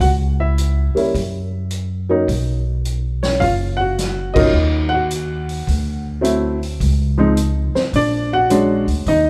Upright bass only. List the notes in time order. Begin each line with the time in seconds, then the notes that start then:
0.00 C#2
0.95 muted upright bass stroke
1.14 F#2
2.28 B1
3.41 F#1
4.53 D#2
5.68 D2
6.81 C#2
7.74 muted upright bass stroke
7.93 A#1
8.87 D2
9.06 D#2